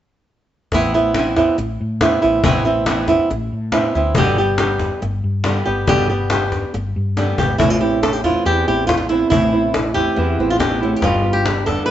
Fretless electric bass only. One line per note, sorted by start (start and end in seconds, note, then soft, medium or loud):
0.73 1.47 A1 medium
1.58 1.77 A1 medium
1.81 2.17 A2 medium
2.24 2.42 A1 medium
2.45 3.18 A1 medium
3.31 3.49 A1 medium
3.52 3.89 A2 medium
3.95 4.13 D2 medium
4.17 4.91 G1 medium
5.02 5.21 G1 medium
5.24 5.60 G2 medium
5.67 5.85 G1 medium
5.89 6.62 G1 medium
6.74 6.92 G1 medium
6.96 7.33 G2 medium
7.38 7.57 G#1 medium
7.60 8.34 A1 medium
8.46 8.64 E2 medium
8.68 9.23 A1 medium
9.32 10.06 A1 medium
10.18 10.36 E2 medium
10.39 10.94 A1 medium
11.04 11.78 G1 medium